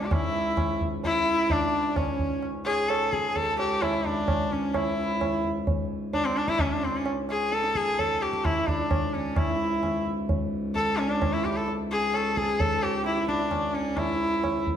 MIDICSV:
0, 0, Header, 1, 5, 480
1, 0, Start_track
1, 0, Tempo, 461894
1, 113, Time_signature, 5, 2, 24, 8
1, 15345, End_track
2, 0, Start_track
2, 0, Title_t, "Harmonium"
2, 0, Program_c, 0, 20
2, 0, Note_on_c, 0, 62, 54
2, 233, Note_on_c, 0, 64, 58
2, 253, Note_off_c, 0, 62, 0
2, 916, Note_off_c, 0, 64, 0
2, 1200, Note_on_c, 0, 64, 64
2, 1680, Note_on_c, 0, 62, 68
2, 1696, Note_off_c, 0, 64, 0
2, 2157, Note_on_c, 0, 61, 51
2, 2177, Note_off_c, 0, 62, 0
2, 2608, Note_off_c, 0, 61, 0
2, 2886, Note_on_c, 0, 68, 62
2, 3126, Note_on_c, 0, 69, 55
2, 3134, Note_off_c, 0, 68, 0
2, 3359, Note_on_c, 0, 68, 63
2, 3375, Note_off_c, 0, 69, 0
2, 3604, Note_on_c, 0, 69, 66
2, 3612, Note_off_c, 0, 68, 0
2, 4080, Note_on_c, 0, 64, 59
2, 4102, Note_off_c, 0, 69, 0
2, 4251, Note_off_c, 0, 64, 0
2, 4266, Note_on_c, 0, 64, 41
2, 4335, Note_off_c, 0, 64, 0
2, 4335, Note_on_c, 0, 62, 62
2, 4816, Note_on_c, 0, 61, 50
2, 4829, Note_off_c, 0, 62, 0
2, 5052, Note_on_c, 0, 64, 60
2, 5062, Note_off_c, 0, 61, 0
2, 5733, Note_off_c, 0, 64, 0
2, 6487, Note_on_c, 0, 62, 73
2, 6979, Note_on_c, 0, 61, 60
2, 6986, Note_off_c, 0, 62, 0
2, 7091, Note_on_c, 0, 62, 57
2, 7101, Note_off_c, 0, 61, 0
2, 7428, Note_off_c, 0, 62, 0
2, 7692, Note_on_c, 0, 68, 60
2, 7941, Note_off_c, 0, 68, 0
2, 7942, Note_on_c, 0, 69, 58
2, 8385, Note_off_c, 0, 69, 0
2, 8420, Note_on_c, 0, 69, 57
2, 8864, Note_off_c, 0, 69, 0
2, 8901, Note_on_c, 0, 64, 58
2, 9141, Note_on_c, 0, 62, 61
2, 9145, Note_off_c, 0, 64, 0
2, 9855, Note_on_c, 0, 64, 58
2, 9879, Note_off_c, 0, 62, 0
2, 10532, Note_off_c, 0, 64, 0
2, 11294, Note_on_c, 0, 69, 69
2, 11465, Note_off_c, 0, 69, 0
2, 11478, Note_on_c, 0, 62, 44
2, 11538, Note_on_c, 0, 61, 64
2, 11540, Note_off_c, 0, 62, 0
2, 11900, Note_on_c, 0, 64, 61
2, 11904, Note_off_c, 0, 61, 0
2, 12138, Note_on_c, 0, 69, 57
2, 12140, Note_off_c, 0, 64, 0
2, 12244, Note_off_c, 0, 69, 0
2, 12490, Note_on_c, 0, 68, 60
2, 12722, Note_on_c, 0, 69, 64
2, 12734, Note_off_c, 0, 68, 0
2, 12966, Note_on_c, 0, 68, 66
2, 12970, Note_off_c, 0, 69, 0
2, 13211, Note_off_c, 0, 68, 0
2, 13211, Note_on_c, 0, 69, 59
2, 13444, Note_on_c, 0, 67, 69
2, 13453, Note_off_c, 0, 69, 0
2, 13685, Note_on_c, 0, 64, 58
2, 13689, Note_off_c, 0, 67, 0
2, 13914, Note_on_c, 0, 62, 63
2, 13929, Note_off_c, 0, 64, 0
2, 14634, Note_on_c, 0, 64, 61
2, 14655, Note_off_c, 0, 62, 0
2, 15309, Note_off_c, 0, 64, 0
2, 15345, End_track
3, 0, Start_track
3, 0, Title_t, "Sarangi"
3, 0, Program_c, 1, 110
3, 43, Note_on_c, 1, 67, 51
3, 124, Note_on_c, 1, 64, 77
3, 139, Note_off_c, 1, 67, 0
3, 842, Note_off_c, 1, 64, 0
3, 1085, Note_on_c, 1, 64, 103
3, 1569, Note_on_c, 1, 62, 91
3, 1584, Note_off_c, 1, 64, 0
3, 2042, Note_on_c, 1, 61, 73
3, 2058, Note_off_c, 1, 62, 0
3, 2525, Note_off_c, 1, 61, 0
3, 2755, Note_on_c, 1, 68, 98
3, 3001, Note_on_c, 1, 69, 95
3, 3016, Note_off_c, 1, 68, 0
3, 3241, Note_on_c, 1, 68, 88
3, 3256, Note_off_c, 1, 69, 0
3, 3487, Note_on_c, 1, 69, 101
3, 3503, Note_off_c, 1, 68, 0
3, 3720, Note_off_c, 1, 69, 0
3, 3726, Note_on_c, 1, 67, 90
3, 3965, Note_on_c, 1, 64, 84
3, 3981, Note_off_c, 1, 67, 0
3, 4216, Note_on_c, 1, 62, 80
3, 4231, Note_off_c, 1, 64, 0
3, 4699, Note_on_c, 1, 61, 66
3, 4714, Note_off_c, 1, 62, 0
3, 4941, Note_on_c, 1, 64, 74
3, 4957, Note_off_c, 1, 61, 0
3, 5658, Note_off_c, 1, 64, 0
3, 6379, Note_on_c, 1, 62, 86
3, 6493, Note_on_c, 1, 60, 82
3, 6508, Note_off_c, 1, 62, 0
3, 6617, Note_on_c, 1, 62, 83
3, 6632, Note_off_c, 1, 60, 0
3, 6739, Note_on_c, 1, 64, 104
3, 6754, Note_off_c, 1, 62, 0
3, 6861, Note_on_c, 1, 61, 77
3, 6876, Note_off_c, 1, 64, 0
3, 6986, Note_on_c, 1, 62, 80
3, 7001, Note_off_c, 1, 61, 0
3, 7111, Note_on_c, 1, 60, 70
3, 7126, Note_off_c, 1, 62, 0
3, 7235, Note_on_c, 1, 61, 68
3, 7250, Note_off_c, 1, 60, 0
3, 7345, Note_off_c, 1, 61, 0
3, 7591, Note_on_c, 1, 68, 91
3, 7821, Note_on_c, 1, 69, 102
3, 7837, Note_off_c, 1, 68, 0
3, 8061, Note_on_c, 1, 68, 101
3, 8077, Note_off_c, 1, 69, 0
3, 8299, Note_on_c, 1, 69, 91
3, 8314, Note_off_c, 1, 68, 0
3, 8538, Note_on_c, 1, 67, 79
3, 8553, Note_off_c, 1, 69, 0
3, 8775, Note_on_c, 1, 64, 83
3, 8791, Note_off_c, 1, 67, 0
3, 9015, Note_on_c, 1, 62, 80
3, 9031, Note_off_c, 1, 64, 0
3, 9494, Note_on_c, 1, 61, 70
3, 9509, Note_off_c, 1, 62, 0
3, 9735, Note_on_c, 1, 64, 76
3, 9751, Note_off_c, 1, 61, 0
3, 10454, Note_off_c, 1, 64, 0
3, 11169, Note_on_c, 1, 69, 96
3, 11416, Note_on_c, 1, 61, 83
3, 11431, Note_off_c, 1, 69, 0
3, 11536, Note_on_c, 1, 62, 81
3, 11551, Note_off_c, 1, 61, 0
3, 11771, Note_on_c, 1, 64, 85
3, 11787, Note_off_c, 1, 62, 0
3, 11891, Note_on_c, 1, 67, 74
3, 11906, Note_off_c, 1, 64, 0
3, 12016, Note_on_c, 1, 69, 74
3, 12031, Note_off_c, 1, 67, 0
3, 12132, Note_off_c, 1, 69, 0
3, 12380, Note_on_c, 1, 68, 97
3, 12622, Note_on_c, 1, 69, 87
3, 12637, Note_off_c, 1, 68, 0
3, 12854, Note_on_c, 1, 68, 93
3, 12870, Note_off_c, 1, 69, 0
3, 13091, Note_on_c, 1, 69, 99
3, 13107, Note_off_c, 1, 68, 0
3, 13325, Note_on_c, 1, 67, 88
3, 13340, Note_off_c, 1, 69, 0
3, 13563, Note_off_c, 1, 67, 0
3, 13567, Note_on_c, 1, 64, 85
3, 13787, Note_off_c, 1, 64, 0
3, 13802, Note_on_c, 1, 62, 80
3, 14278, Note_on_c, 1, 61, 72
3, 14294, Note_off_c, 1, 62, 0
3, 14518, Note_on_c, 1, 64, 86
3, 14533, Note_off_c, 1, 61, 0
3, 15233, Note_off_c, 1, 64, 0
3, 15345, End_track
4, 0, Start_track
4, 0, Title_t, "Harmonium"
4, 0, Program_c, 2, 20
4, 114, Note_on_c, 2, 44, 61
4, 117, Note_on_c, 2, 37, 66
4, 9710, Note_off_c, 2, 37, 0
4, 9712, Note_off_c, 2, 44, 0
4, 9725, Note_on_c, 2, 37, 69
4, 9728, Note_on_c, 2, 44, 63
4, 15345, Note_off_c, 2, 37, 0
4, 15345, Note_off_c, 2, 44, 0
4, 15345, End_track
5, 0, Start_track
5, 0, Title_t, "Tabla"
5, 117, Note_on_c, 9, 60, 89
5, 117, Note_on_c, 9, 64, 80
5, 221, Note_off_c, 9, 60, 0
5, 221, Note_off_c, 9, 64, 0
5, 594, Note_on_c, 9, 60, 76
5, 594, Note_on_c, 9, 64, 64
5, 698, Note_off_c, 9, 60, 0
5, 698, Note_off_c, 9, 64, 0
5, 843, Note_on_c, 9, 64, 51
5, 947, Note_off_c, 9, 64, 0
5, 1077, Note_on_c, 9, 63, 86
5, 1077, Note_on_c, 9, 64, 71
5, 1181, Note_off_c, 9, 63, 0
5, 1181, Note_off_c, 9, 64, 0
5, 1557, Note_on_c, 9, 63, 79
5, 1557, Note_on_c, 9, 64, 65
5, 1661, Note_off_c, 9, 63, 0
5, 1661, Note_off_c, 9, 64, 0
5, 2040, Note_on_c, 9, 60, 70
5, 2040, Note_on_c, 9, 64, 62
5, 2144, Note_off_c, 9, 60, 0
5, 2144, Note_off_c, 9, 64, 0
5, 2279, Note_on_c, 9, 64, 53
5, 2383, Note_off_c, 9, 64, 0
5, 2521, Note_on_c, 9, 60, 61
5, 2624, Note_off_c, 9, 60, 0
5, 2768, Note_on_c, 9, 60, 61
5, 2872, Note_off_c, 9, 60, 0
5, 3016, Note_on_c, 9, 60, 74
5, 3120, Note_off_c, 9, 60, 0
5, 3251, Note_on_c, 9, 37, 58
5, 3355, Note_off_c, 9, 37, 0
5, 3489, Note_on_c, 9, 63, 85
5, 3489, Note_on_c, 9, 64, 70
5, 3593, Note_off_c, 9, 63, 0
5, 3593, Note_off_c, 9, 64, 0
5, 3732, Note_on_c, 9, 60, 59
5, 3836, Note_off_c, 9, 60, 0
5, 3972, Note_on_c, 9, 60, 72
5, 3972, Note_on_c, 9, 64, 70
5, 4075, Note_off_c, 9, 60, 0
5, 4075, Note_off_c, 9, 64, 0
5, 4218, Note_on_c, 9, 64, 53
5, 4322, Note_off_c, 9, 64, 0
5, 4447, Note_on_c, 9, 60, 77
5, 4447, Note_on_c, 9, 64, 71
5, 4551, Note_off_c, 9, 60, 0
5, 4551, Note_off_c, 9, 64, 0
5, 4691, Note_on_c, 9, 64, 49
5, 4795, Note_off_c, 9, 64, 0
5, 4930, Note_on_c, 9, 60, 89
5, 4930, Note_on_c, 9, 64, 75
5, 5034, Note_off_c, 9, 60, 0
5, 5034, Note_off_c, 9, 64, 0
5, 5416, Note_on_c, 9, 60, 76
5, 5416, Note_on_c, 9, 64, 73
5, 5520, Note_off_c, 9, 60, 0
5, 5520, Note_off_c, 9, 64, 0
5, 5650, Note_on_c, 9, 64, 51
5, 5754, Note_off_c, 9, 64, 0
5, 5895, Note_on_c, 9, 63, 83
5, 5895, Note_on_c, 9, 64, 73
5, 5998, Note_off_c, 9, 63, 0
5, 5998, Note_off_c, 9, 64, 0
5, 6375, Note_on_c, 9, 63, 73
5, 6375, Note_on_c, 9, 64, 67
5, 6479, Note_off_c, 9, 63, 0
5, 6479, Note_off_c, 9, 64, 0
5, 6620, Note_on_c, 9, 60, 59
5, 6724, Note_off_c, 9, 60, 0
5, 6733, Note_on_c, 9, 37, 55
5, 6837, Note_off_c, 9, 37, 0
5, 6846, Note_on_c, 9, 60, 67
5, 6846, Note_on_c, 9, 64, 68
5, 6950, Note_off_c, 9, 60, 0
5, 6950, Note_off_c, 9, 64, 0
5, 7093, Note_on_c, 9, 64, 52
5, 7197, Note_off_c, 9, 64, 0
5, 7333, Note_on_c, 9, 60, 69
5, 7437, Note_off_c, 9, 60, 0
5, 7575, Note_on_c, 9, 60, 61
5, 7679, Note_off_c, 9, 60, 0
5, 7818, Note_on_c, 9, 62, 76
5, 7922, Note_off_c, 9, 62, 0
5, 7940, Note_on_c, 9, 62, 65
5, 8044, Note_off_c, 9, 62, 0
5, 8058, Note_on_c, 9, 37, 59
5, 8162, Note_off_c, 9, 37, 0
5, 8182, Note_on_c, 9, 62, 63
5, 8286, Note_off_c, 9, 62, 0
5, 8302, Note_on_c, 9, 63, 79
5, 8302, Note_on_c, 9, 64, 70
5, 8406, Note_off_c, 9, 63, 0
5, 8406, Note_off_c, 9, 64, 0
5, 8540, Note_on_c, 9, 60, 59
5, 8644, Note_off_c, 9, 60, 0
5, 8661, Note_on_c, 9, 37, 59
5, 8765, Note_off_c, 9, 37, 0
5, 8780, Note_on_c, 9, 60, 73
5, 8780, Note_on_c, 9, 64, 66
5, 8884, Note_off_c, 9, 60, 0
5, 8884, Note_off_c, 9, 64, 0
5, 9018, Note_on_c, 9, 64, 57
5, 9121, Note_off_c, 9, 64, 0
5, 9257, Note_on_c, 9, 60, 79
5, 9257, Note_on_c, 9, 64, 73
5, 9361, Note_off_c, 9, 60, 0
5, 9361, Note_off_c, 9, 64, 0
5, 9501, Note_on_c, 9, 64, 49
5, 9605, Note_off_c, 9, 64, 0
5, 9731, Note_on_c, 9, 60, 92
5, 9731, Note_on_c, 9, 64, 84
5, 9835, Note_off_c, 9, 60, 0
5, 9835, Note_off_c, 9, 64, 0
5, 10215, Note_on_c, 9, 60, 66
5, 10215, Note_on_c, 9, 64, 69
5, 10319, Note_off_c, 9, 60, 0
5, 10319, Note_off_c, 9, 64, 0
5, 10457, Note_on_c, 9, 64, 47
5, 10560, Note_off_c, 9, 64, 0
5, 10696, Note_on_c, 9, 63, 76
5, 10696, Note_on_c, 9, 64, 72
5, 10800, Note_off_c, 9, 63, 0
5, 10800, Note_off_c, 9, 64, 0
5, 11173, Note_on_c, 9, 63, 70
5, 11173, Note_on_c, 9, 64, 63
5, 11277, Note_off_c, 9, 63, 0
5, 11277, Note_off_c, 9, 64, 0
5, 11657, Note_on_c, 9, 60, 77
5, 11657, Note_on_c, 9, 64, 65
5, 11761, Note_off_c, 9, 60, 0
5, 11761, Note_off_c, 9, 64, 0
5, 11896, Note_on_c, 9, 64, 53
5, 12000, Note_off_c, 9, 64, 0
5, 12139, Note_on_c, 9, 62, 62
5, 12243, Note_off_c, 9, 62, 0
5, 12379, Note_on_c, 9, 62, 65
5, 12483, Note_off_c, 9, 62, 0
5, 12614, Note_on_c, 9, 60, 76
5, 12718, Note_off_c, 9, 60, 0
5, 12858, Note_on_c, 9, 37, 58
5, 12962, Note_off_c, 9, 37, 0
5, 13094, Note_on_c, 9, 63, 82
5, 13094, Note_on_c, 9, 64, 76
5, 13198, Note_off_c, 9, 63, 0
5, 13198, Note_off_c, 9, 64, 0
5, 13328, Note_on_c, 9, 60, 57
5, 13432, Note_off_c, 9, 60, 0
5, 13573, Note_on_c, 9, 62, 77
5, 13677, Note_off_c, 9, 62, 0
5, 13690, Note_on_c, 9, 62, 58
5, 13794, Note_off_c, 9, 62, 0
5, 13807, Note_on_c, 9, 37, 58
5, 13911, Note_off_c, 9, 37, 0
5, 13923, Note_on_c, 9, 62, 58
5, 14027, Note_off_c, 9, 62, 0
5, 14041, Note_on_c, 9, 60, 80
5, 14041, Note_on_c, 9, 64, 76
5, 14145, Note_off_c, 9, 60, 0
5, 14145, Note_off_c, 9, 64, 0
5, 14280, Note_on_c, 9, 62, 58
5, 14384, Note_off_c, 9, 62, 0
5, 14515, Note_on_c, 9, 60, 88
5, 14515, Note_on_c, 9, 64, 84
5, 14619, Note_off_c, 9, 60, 0
5, 14619, Note_off_c, 9, 64, 0
5, 15002, Note_on_c, 9, 60, 75
5, 15002, Note_on_c, 9, 64, 62
5, 15106, Note_off_c, 9, 60, 0
5, 15106, Note_off_c, 9, 64, 0
5, 15242, Note_on_c, 9, 64, 51
5, 15345, Note_off_c, 9, 64, 0
5, 15345, End_track
0, 0, End_of_file